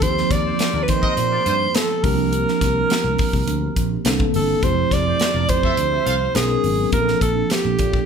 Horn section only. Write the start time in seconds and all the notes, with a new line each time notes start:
0.31 D4 A#4 D5
0.45 G3 F4 C5
0.59 G3 F4 C5
0.74 D4 A#4 D5
1.02 C4 A#4 D#5
1.31 D4 A#4 D5
1.45 G3 F4 C5
4.91 D4 A#4 D5
5.06 A3 G4 C5
5.20 A3 G4 C5
5.34 D4 A#4 D5
5.63 C4 A4 E5
5.92 C4 A4 E5
6.06 C4 A4 F5